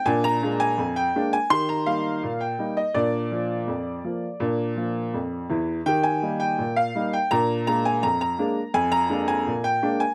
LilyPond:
<<
  \new Staff \with { instrumentName = "Upright piano" } { \time 2/4 \key bes \mixolydian \tempo 4 = 83 aes''16 bes''8 aes''8 g''8 aes''16 | c'''16 bes''16 f''8. g''8 ees''16 | d''2~ | d''4. r8 |
g''16 aes''8 g''8 f''8 g''16 | bes''8 bes''16 aes''16 bes''16 bes''8. | aes''16 bes''8 aes''8 g''8 aes''16 | }
  \new Staff \with { instrumentName = "Upright piano" } { \time 2/4 \key bes \mixolydian <bes, d'>8 <aes bes d'>8 f,8 <aes bes d'>8 | <ees g'>8 <g bes ees'>8 bes,8 <g bes ees'>8 | <bes, d'>8 <f bes f'>8 f,8 <f bes f'>8 | <bes, d'>8 <f bes f'>8 f,8 <fes, fes>8 |
<ees g'>8 <g bes ees'>8 bes,8 <g bes ees'>8 | <bes, d'>8 <aes bes d'>8 f,8 <aes bes d'>8 | f,8 <aes bes d'>8 bes,8 <aes bes d'>8 | }
>>